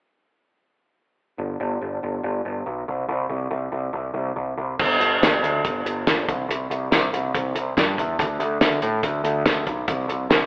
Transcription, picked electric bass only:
1.38 1.55 G1 medium
1.60 1.77 G1 medium
1.81 1.98 G1 medium
2.03 2.19 G1 medium
2.23 2.40 G1 medium
2.45 2.62 G1 medium
2.66 2.83 B1 medium
2.88 3.05 C2 medium
3.09 3.25 C2 medium
3.30 3.46 C2 medium
3.51 3.68 C2 medium
3.72 3.89 C2 medium
3.93 4.10 C2 medium
4.14 4.31 C2 medium
4.36 4.53 C2 medium
4.58 4.74 C2 medium
4.79 4.97 G1 medium
4.99 5.18 G1 medium
5.22 5.39 G1 medium
5.43 5.61 D2 medium
5.65 5.82 G1 medium
5.85 6.03 G1 medium
6.08 6.25 G1 medium
6.28 6.46 C2 medium
6.49 6.67 C2 medium
6.70 6.88 C2 medium
6.91 7.09 C2 medium
7.13 7.31 C2 medium
7.35 7.52 C2 medium
7.55 7.73 C2 medium
7.77 7.95 G2 medium
7.98 8.16 E2 medium
8.19 8.37 D2 medium
8.39 8.58 D2 medium
8.61 8.79 D2 medium
8.82 9.00 A2 medium
9.03 9.21 D2 medium
9.24 9.42 D2 medium
9.67 9.85 B1 medium
9.88 10.06 C2 medium
10.08 10.27 C2 medium
10.29 10.46 C2 medium

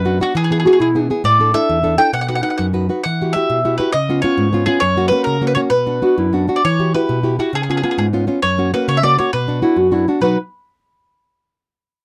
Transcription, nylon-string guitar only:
0.00 0.20 F#2 medium
0.05 0.19 B3 medium
0.05 0.20 D4 soft
0.05 0.20 F#4 medium
0.20 0.32 B3 soft
0.20 0.33 D4 soft
0.20 0.32 F#4 medium
0.35 0.64 E3 medium
0.51 0.64 B3 soft
0.51 0.65 E4 soft
0.51 0.66 G#4 soft
0.66 0.89 B3 medium
0.66 0.90 E4 soft
0.66 0.90 G#4 medium
0.80 1.09 B2 medium
0.95 1.09 B3 soft
0.95 1.09 E4 soft
0.95 1.10 G#4 medium
1.10 1.21 B3 medium
1.10 1.21 E4 soft
1.10 1.22 G#4 medium
1.24 1.53 A2 medium
1.39 1.53 D4 soft
1.39 1.53 E4 soft
1.39 1.53 A4 medium
1.54 1.77 D4 soft
1.54 1.78 E4 soft
1.54 1.78 A4 medium
1.69 1.98 E2 medium
1.83 1.97 D4 soft
1.83 1.97 E4 soft
1.83 1.97 A4 medium
1.98 2.10 D4 soft
1.98 2.10 E4 soft
1.98 2.10 A4 soft
2.13 2.42 B2 medium
2.29 2.41 D#4 soft
2.29 2.42 F#4 soft
2.29 2.42 B4 soft
2.43 2.67 D#4 soft
2.43 2.68 F#4 soft
2.43 2.68 B4 soft
2.59 2.88 F#2 medium
2.73 2.88 D#4 soft
2.73 2.88 F#4 soft
2.73 2.89 B4 medium
2.89 3.01 D#4 soft
2.89 3.01 F#4 soft
2.89 3.02 B4 soft
3.06 3.34 E3 medium
3.21 3.34 E4 soft
3.21 3.34 F#4 soft
3.21 3.35 G4 soft
3.35 3.59 E4 medium
3.35 3.59 F#4 soft
3.35 3.59 G4 medium
3.50 3.78 B2 medium
3.65 3.78 E4 soft
3.65 3.78 F#4 soft
3.65 3.78 G4 medium
3.79 3.91 E4 soft
3.79 3.91 F#4 soft
3.79 3.91 G4 medium
3.94 4.23 C#3 medium
4.09 4.23 B3 soft
4.09 4.23 C#4 soft
4.09 4.23 F4 medium
4.24 4.47 B3 soft
4.24 4.48 C#4 medium
4.24 4.48 F4 medium
4.38 4.66 G#2 medium
4.53 4.65 B3 medium
4.53 4.66 C#4 soft
4.53 4.66 F4 medium
4.67 4.79 B3 medium
4.67 4.79 C#4 medium
4.67 4.79 F4 medium
4.82 5.11 F#2 medium
4.96 5.10 A#3 soft
4.96 5.10 C#4 soft
4.96 5.11 F#4 medium
5.11 5.36 A#3 medium
5.11 5.36 C#4 medium
5.11 5.36 F#4 medium
5.27 5.56 C#3 medium
5.42 5.55 A#3 soft
5.42 5.55 C#4 soft
5.42 5.55 F#4 soft
5.56 5.68 A#3 medium
5.56 5.68 C#4 soft
5.56 5.69 F#4 medium
5.70 6.01 B2 medium
5.86 6.01 B3 soft
5.86 6.01 D4 soft
5.86 6.01 F#4 soft
6.02 6.27 B3 medium
6.02 6.27 D4 medium
6.02 6.27 F#4 medium
6.18 6.47 F#2 medium
6.33 6.46 B3 soft
6.33 6.47 D4 soft
6.33 6.48 F#4 soft
6.48 6.60 B3 soft
6.48 6.60 D4 soft
6.48 6.61 F#4 medium
6.65 6.94 E3 medium
6.79 6.94 E4 soft
6.79 6.94 F#4 soft
6.79 6.94 G4 medium
6.95 7.19 E4 soft
6.95 7.19 F#4 soft
6.95 7.19 G4 medium
7.09 7.38 B2 medium
7.23 7.38 E4 soft
7.23 7.38 F#4 soft
7.23 7.38 G4 medium
7.39 7.50 E4 soft
7.39 7.51 F#4 soft
7.39 7.51 G4 medium
7.53 7.82 C#3 medium
7.69 7.82 B3 soft
7.69 7.83 C#4 soft
7.69 7.83 F4 soft
7.84 8.07 B3 medium
7.84 8.07 C#4 soft
7.84 8.08 F4 soft
7.98 8.27 G#2 medium
8.13 8.26 B3 soft
8.13 8.27 C#4 soft
8.13 8.26 F4 medium
8.27 8.39 B3 medium
8.27 8.39 C#4 medium
8.27 8.39 F4 medium
8.43 8.71 F#2 medium
8.58 8.72 A#3 soft
8.58 8.72 C#4 soft
8.58 8.73 F#4 soft
8.74 8.97 A#3 medium
8.74 8.97 C#4 medium
8.74 8.97 F#4 medium
8.88 9.17 C#3 medium
9.03 9.17 A#3 soft
9.03 9.18 C#4 medium
9.03 9.19 F#4 soft
9.18 9.29 A#3 soft
9.18 9.30 C#4 soft
9.18 9.30 F#4 medium
9.33 9.62 B2 medium
9.48 9.61 B3 soft
9.48 9.61 D4 soft
9.48 9.61 F#4 soft
9.62 9.86 B3 soft
9.62 9.86 D4 soft
9.62 9.86 F#4 medium
9.76 10.06 F#2 medium
9.91 10.06 B3 soft
9.91 10.07 D4 soft
9.91 10.07 F#4 soft
10.08 10.19 B3 soft
10.08 10.20 D4 soft
10.08 10.20 F#4 soft
10.21 10.36 B2 soft
10.21 10.36 F#3 soft
10.21 10.36 B3 medium
10.21 10.37 D#4 soft
10.21 10.37 F#4 medium

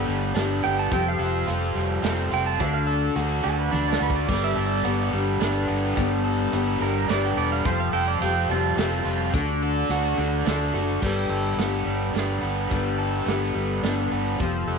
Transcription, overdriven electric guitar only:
0.00 0.62 B3 medium
0.00 1.18 A4 medium
0.07 0.92 G3 medium
0.34 0.91 D4 medium
0.63 0.92 B3 medium
0.92 2.32 F3 medium
1.19 2.87 A4 medium
1.46 2.30 F4 medium
1.75 2.59 G3 medium
2.02 2.59 C4 medium
2.31 2.60 F4 medium
2.60 3.42 D3 medium
2.87 4.31 A4 medium
3.15 3.98 F#4 medium
3.43 4.28 D3 medium
3.72 5.40 D4 medium
3.99 4.28 F#4 medium
4.28 5.12 G3 medium
4.56 5.99 A4 medium
4.84 5.67 B3 medium
5.13 5.95 G3 medium
5.40 6.81 D4 medium
5.68 6.51 B3 medium
5.96 6.78 G3 medium
6.24 7.93 A4 medium
6.52 7.37 B3 medium
6.79 7.64 G3 medium
7.08 7.65 D4 medium
7.38 7.65 B3 medium
7.66 9.06 F3 medium
7.93 9.62 A4 medium
8.21 9.04 F4 medium
8.49 9.33 G3 medium
8.78 9.34 C4 medium
9.05 9.33 F4 medium
9.34 10.16 D3 medium
9.62 11.02 A4 medium
9.91 10.73 F#4 medium
10.18 11.01 D3 medium
10.46 11.02 D4 medium
10.74 11.02 F#4 medium
11.02 11.86 G3 medium
11.30 12.73 A4 medium
11.59 12.40 B3 medium
11.86 12.70 G3 medium
12.14 13.55 D4 medium
12.42 13.25 B3 medium
12.70 13.53 G3 medium
12.99 14.68 A4 medium
13.26 14.11 B3 medium
13.55 14.39 G3 medium
13.83 14.39 D4 medium
14.12 14.40 B3 medium
14.40 14.79 F3 medium
14.68 14.79 A4 medium

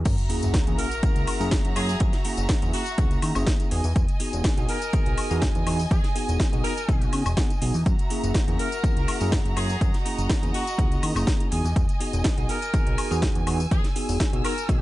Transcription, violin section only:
0.06 3.68 F#4 medium
0.06 3.68 E5 medium
0.06 3.68 A#5 medium
3.72 7.82 D#5 medium
3.72 7.82 G#5 medium
7.86 11.48 F#4 medium
7.86 9.79 E5 medium
7.86 11.48 A#5 medium
9.82 11.50 D#5 medium
11.52 13.45 D#5 medium
11.52 14.82 G#5 medium
13.47 14.82 E6 medium

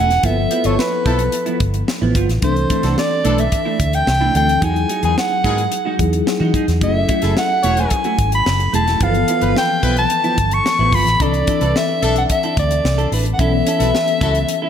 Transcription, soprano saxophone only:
0.00 0.27 F#5 medium
0.25 0.67 E5 medium
0.66 0.81 C#5 medium
0.79 1.61 B4 medium
2.44 2.94 C5 medium
2.98 3.41 D5 medium
3.39 3.96 E5 medium
3.95 4.35 G5 loud
4.36 4.66 G5 loud
4.64 5.04 G#5 medium
5.05 5.17 G#5 medium
5.19 5.96 F#5 medium
6.83 7.33 E5 medium
7.38 7.81 F#5 medium
7.80 8.33 G#5 medium
8.35 8.72 B5 medium
8.75 9.04 A5 medium
9.03 9.57 F5 medium
9.58 9.95 G5 medium
9.98 10.55 A5 medium
10.54 10.96 C#6 loud
10.95 11.24 B5 loud
11.22 11.79 D5 medium
11.77 12.17 E5 medium
12.18 12.24 F#5 medium
12.32 12.56 E5 medium
12.59 13.09 D5 medium
13.33 13.41 F#5 medium
13.40 14.70 E5 loud

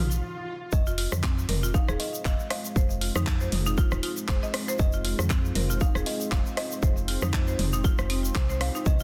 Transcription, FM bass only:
0.00 0.22 A#1 medium
0.73 1.08 F1 loud
1.12 1.45 F2 loud
1.49 1.84 F1 medium
1.88 1.97 D#1 medium
2.25 2.36 F1 medium
2.76 3.11 F1 loud
3.15 3.48 F2 loud
3.52 3.87 F1 medium
3.92 4.01 D#1 medium
4.29 4.40 F1 medium
4.79 5.14 F1 loud
5.19 5.52 F2 medium
5.55 5.91 F1 medium
5.95 6.04 D#1 medium
6.32 6.43 F1 medium
6.83 7.18 F1 loud
7.22 7.55 F2 loud
7.59 7.94 F1 medium
7.99 8.32 F1 medium
8.35 8.70 C2 loud
8.86 9.03 C2 loud

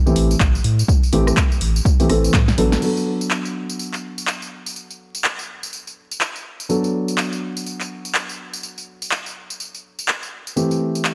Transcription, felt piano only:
0.06 0.32 E3 medium
0.06 0.32 A3 medium
0.06 0.32 C4 medium
0.06 0.32 G4 medium
1.13 1.30 E3 medium
1.13 1.30 A3 medium
1.13 1.30 C4 medium
1.13 1.30 G4 loud
2.00 2.08 E3 medium
2.00 2.08 A3 medium
2.00 2.08 C4 medium
2.00 2.08 G4 medium
2.10 2.36 E3 medium
2.10 2.36 A3 medium
2.10 2.36 C4 medium
2.10 2.36 A4 loud
2.58 2.81 F#3 medium
2.58 2.81 B3 medium
2.58 2.81 D4 medium
2.58 2.81 A4 medium
2.82 6.67 F#3 medium
2.82 6.67 B3 medium
2.82 6.67 D4 medium
2.82 6.67 A4 medium
6.69 10.54 F#3 medium
6.69 10.54 B3 medium
6.69 10.54 D4 medium
6.69 10.54 A4 medium
10.56 11.14 E3 medium
10.56 11.14 A3 medium
10.56 11.14 C4 medium
10.56 11.14 G4 medium

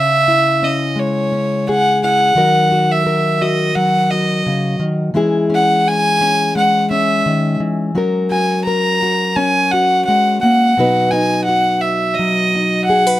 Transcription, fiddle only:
0.00 0.66 E5 loud
0.64 1.01 D#5 medium
0.99 1.67 C#5 medium
1.69 2.00 F#5 loud
2.03 2.93 F#5 loud
2.92 3.43 E5 medium
3.41 3.77 D#5 medium
3.75 4.12 F#5 loud
4.10 4.80 D#5 medium
5.55 5.89 F#5 loud
5.88 6.56 G#5 loud
6.57 6.88 F#5 loud
6.91 7.56 E5 medium
8.30 8.63 G#5 medium
8.65 9.37 A#5 loud
9.36 9.73 G#5 loud
9.71 10.04 F#5 loud
10.05 10.38 F#5 medium
10.41 11.12 F#5 loud
11.11 11.44 G#5 medium
11.44 11.82 F#5 loud
11.81 12.16 E5 medium
12.15 12.84 D#5 medium
12.85 13.19 F#5 loud

